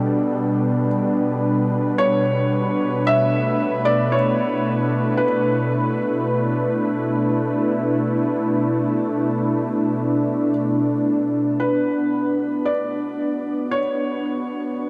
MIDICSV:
0, 0, Header, 1, 3, 480
1, 0, Start_track
1, 0, Tempo, 1071429
1, 1362, Time_signature, 4, 2, 24, 8
1, 6673, End_track
2, 0, Start_track
2, 0, Title_t, "Felt piano"
2, 0, Program_c, 0, 0
2, 0, Note_on_c, 0, 74, 69
2, 386, Note_off_c, 0, 74, 0
2, 888, Note_on_c, 0, 73, 91
2, 1348, Note_off_c, 0, 73, 0
2, 1374, Note_on_c, 0, 76, 96
2, 1726, Note_on_c, 0, 74, 92
2, 1739, Note_off_c, 0, 76, 0
2, 1846, Note_on_c, 0, 73, 78
2, 1848, Note_off_c, 0, 74, 0
2, 2318, Note_on_c, 0, 71, 76
2, 2339, Note_off_c, 0, 73, 0
2, 4702, Note_off_c, 0, 71, 0
2, 5196, Note_on_c, 0, 71, 78
2, 5669, Note_on_c, 0, 74, 78
2, 5694, Note_off_c, 0, 71, 0
2, 6144, Note_on_c, 0, 73, 78
2, 6171, Note_off_c, 0, 74, 0
2, 6673, Note_off_c, 0, 73, 0
2, 6673, End_track
3, 0, Start_track
3, 0, Title_t, "Analog synth pad"
3, 0, Program_c, 1, 89
3, 0, Note_on_c, 1, 47, 88
3, 0, Note_on_c, 1, 55, 90
3, 0, Note_on_c, 1, 62, 78
3, 0, Note_on_c, 1, 69, 89
3, 0, Note_on_c, 1, 71, 73
3, 1363, Note_off_c, 1, 55, 0
3, 1409, Note_on_c, 1, 57, 91
3, 1858, Note_on_c, 1, 64, 79
3, 2385, Note_off_c, 1, 69, 0
3, 2769, Note_off_c, 1, 62, 0
3, 2780, Note_on_c, 1, 62, 79
3, 5200, Note_off_c, 1, 57, 0
3, 5204, Note_off_c, 1, 47, 0
3, 5213, Note_on_c, 1, 59, 83
3, 5443, Note_on_c, 1, 66, 84
3, 6125, Note_off_c, 1, 64, 0
3, 6650, Note_off_c, 1, 71, 0
3, 6673, Note_off_c, 1, 59, 0
3, 6673, Note_off_c, 1, 62, 0
3, 6673, Note_off_c, 1, 66, 0
3, 6673, End_track
0, 0, End_of_file